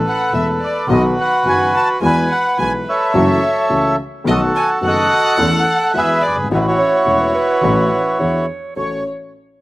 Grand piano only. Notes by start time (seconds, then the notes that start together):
0.33 E1 E2 E3 A3 B3 A4
0.89 B1 B2 D#3 F#3 B3 F#4
1.45 F#1 F#2 D#3 F#3 B3 F#4
2.02 E2 E3 G#3 B3 F#4
2.58 B1 B2 E3 G#3 B3 F#4
3.14 F#2 E3 F#3 A3 C#4 F#4
3.69 C#2 C#3 E3 A3 C#4 F#4
4.24 B1 B2 D#3 A3 B3 F#4
4.81 F#1 F#2 D#3 A3 B3 F#4
5.38 E2 E3 A3 C#4 A4
5.93 E2 E3 G#3 B3 F#4
6.28 F#1
6.36 G1
6.44 G#1
6.51 A1 A2 E3 A3 C#4 F#4
7.05 E1 E2 E3 A3 C#4 F#4
7.63 A1 A2 E3 A3 C#4 F#4
8.19 E2 E3 B3 D4 G#4
8.76 A1 C#4 F#4 A4